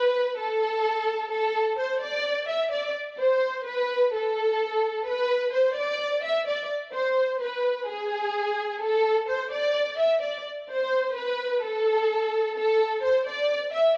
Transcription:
0.00 0.35 B4 loud
0.38 1.28 A4 loud
1.31 1.75 A4 loud
1.79 1.99 C5 medium
2.02 2.46 D5 medium
2.48 2.69 E5 medium
2.72 2.92 D5 medium
3.19 3.63 C5 loud
3.66 4.10 B4 medium
4.13 5.03 A4 medium
5.07 5.51 B4 loud
5.53 5.73 C5 medium
5.76 6.21 D5 medium
6.24 6.44 E5 medium
6.47 6.67 D5 medium
6.93 7.38 C5 loud
7.41 7.85 B4 medium
7.87 8.77 G#4 medium
8.81 9.25 A4 loud
9.29 9.49 C5 medium
9.52 9.96 D5 medium
9.99 10.19 E5 medium
10.22 10.42 D5 medium
10.69 11.13 C5 medium
11.15 11.60 B4 medium
11.62 12.52 A4 loud
12.57 13.01 A4 loud
13.03 13.24 C5 medium
13.27 13.71 D5 medium
13.73 13.94 E5 medium

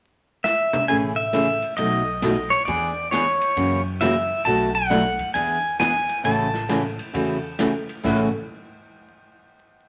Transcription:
0.44 0.90 E5 medium
0.44 snare medium
0.73 mid tom medium
0.88 1.60 A1 medium
0.88 1.11 C#3 medium
0.88 1.11 E3 medium
0.88 1.11 A3 medium
0.88 1.11 C#4 medium
0.88 1.11 G#4 medium
0.88 0.96 G#5 loud
0.88 ride soft
1.16 1.76 E5 loud
1.33 1.45 C#3 medium
1.33 1.45 E3 medium
1.33 1.45 A3 medium
1.33 1.45 C#4 medium
1.33 1.46 G#4 medium
1.33 snare medium
1.33 hi-hat pedal medium
1.33 ride medium
1.62 ride soft
1.77 2.49 B1 medium
1.77 2.00 B2 medium
1.77 2.00 F#3 medium
1.77 2.00 A3 medium
1.77 2.01 D#4 medium
1.77 2.01 F#4 medium
1.77 2.53 D#5 medium
1.77 ride medium
2.22 2.34 B2 medium
2.22 2.34 F#3 medium
2.22 2.35 A3 medium
2.22 2.35 D#4 medium
2.22 2.35 F#4 medium
2.22 snare medium
2.22 hi-hat pedal medium
2.22 ride medium
2.50 2.65 C#5 medium
2.50 ride soft
2.65 3.39 E2 medium
2.65 2.90 E3 medium
2.65 2.90 B3 medium
2.65 2.90 D4 medium
2.65 2.90 G#4 medium
2.65 3.11 D5 medium
2.65 ride soft
3.11 3.24 E3 medium
3.11 3.24 B3 medium
3.11 3.24 D4 medium
3.11 3.24 G#4 medium
3.11 3.81 C#5 medium
3.11 snare medium
3.11 hi-hat pedal soft
3.11 ride medium
3.41 ride soft
3.56 4.28 F#2 medium
3.56 3.79 C#3 medium
3.56 3.79 E3 medium
3.56 3.79 A#3 medium
3.56 3.79 C#4 medium
3.56 3.79 F#4 medium
3.56 ride medium
4.01 4.13 C#3 medium
4.01 4.13 E3 medium
4.01 4.13 A#3 medium
4.01 4.13 C#4 medium
4.01 4.13 F#4 medium
4.01 4.47 E5 medium
4.01 snare medium
4.01 hi-hat pedal soft
4.01 ride medium
4.45 5.17 B1 medium
4.45 4.68 B2 medium
4.45 4.68 F#3 medium
4.45 4.68 A3 medium
4.45 4.68 D4 medium
4.45 4.69 F#4 medium
4.45 4.72 A5 loud
4.45 ride medium
4.75 5.31 F#5 loud
4.90 5.02 B2 medium
4.90 5.02 F#3 medium
4.90 5.02 A3 medium
4.90 5.02 D4 medium
4.90 5.02 F#4 medium
4.90 snare medium
4.90 hi-hat pedal soft
4.90 ride medium
5.19 kick medium
5.19 ride soft
5.34 6.06 E2 medium
5.34 5.57 E3 medium
5.34 5.57 B3 medium
5.34 5.57 D4 medium
5.34 5.57 G#4 medium
5.34 5.79 G#5 medium
5.34 ride medium
5.80 5.91 E3 medium
5.80 5.91 B3 medium
5.80 5.92 D4 medium
5.80 5.92 G#4 medium
5.80 6.25 G#5 medium
5.80 snare medium
5.80 hi-hat pedal medium
5.80 ride medium
6.09 ride soft
6.24 6.96 A1 medium
6.24 6.46 C#3 medium
6.24 6.46 E3 medium
6.24 6.47 A3 medium
6.24 6.47 C#4 medium
6.24 6.47 F#4 medium
6.24 7.55 A5 medium
6.24 ride medium
6.54 snare soft
6.69 6.81 C#3 medium
6.69 6.81 E3 medium
6.69 6.81 A3 medium
6.69 6.81 C#4 medium
6.69 6.81 F#4 medium
6.69 snare medium
6.69 hi-hat pedal medium
6.69 ride medium
6.99 ride soft
7.13 7.86 E2 medium
7.13 7.36 C#3 medium
7.13 7.36 E3 medium
7.13 7.36 A3 medium
7.13 7.36 C#4 medium
7.13 7.37 F#4 medium
7.13 ride medium
7.59 7.71 C#3 medium
7.59 7.71 E3 medium
7.59 7.71 A3 medium
7.59 7.71 C#4 medium
7.59 7.71 F#4 medium
7.59 snare medium
7.59 hi-hat pedal medium
7.59 ride medium
7.89 ride soft
8.03 8.31 A1 medium
8.03 8.27 A2 medium
8.03 8.27 C#3 medium
8.03 8.28 E3 medium
8.03 8.28 A3 medium
8.03 8.28 C#4 medium
8.03 8.28 F#4 medium
8.03 kick medium
8.03 snare medium
8.03 crash medium

